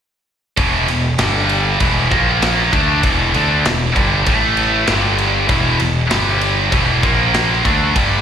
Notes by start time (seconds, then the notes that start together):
0.57 E1 E2 B2 E3, kick, ride
0.88 E1 E2 B2, ride
1.18 G1 G2 D3 G3, snare, ride
1.49 ride
1.80 E1 E2 B2 E3, kick, ride
2.10 A#1 A#2 F3 A#3, kick, ride
2.42 snare, ride
2.73 D2 D3 A3 D4, kick, ride
3.03 E1 E2 B2 E3, kick, ride
3.34 D2 D3 A3 D4, ride
3.65 E1 E2 B2, snare, ride
3.95 G1 G2 D3 G3, kick, ride
4.26 A1 A2 E3 A3, kick, ride
4.57 ride
4.87 G1 G2 D3 G3, snare, ride
5.19 ride
5.48 E1 E2 B2 E3, kick, ride
5.79 E1 E2 B2, ride
6.10 G1 G2 D3 G3, snare, ride
6.41 ride
6.72 E1 E2 B2 E3, kick, ride
7.02 A#1 A#2 F3 A#3, kick, ride
7.34 snare, ride
7.65 D2 D3 A3 D4, kick, ride
7.95 G1 G2 D3 G3, kick, ride